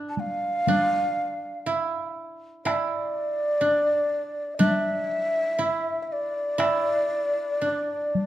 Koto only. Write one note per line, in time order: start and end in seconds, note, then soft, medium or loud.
0.00 0.68 D4 medium
0.00 0.98 E4 medium
0.68 3.11 D4 medium
1.66 2.65 E4 medium
2.65 4.92 E4 medium
3.61 4.59 D4 medium
4.59 7.02 D4 loud
5.59 6.58 E4 medium
6.58 8.26 E4 loud
7.62 8.26 D4 medium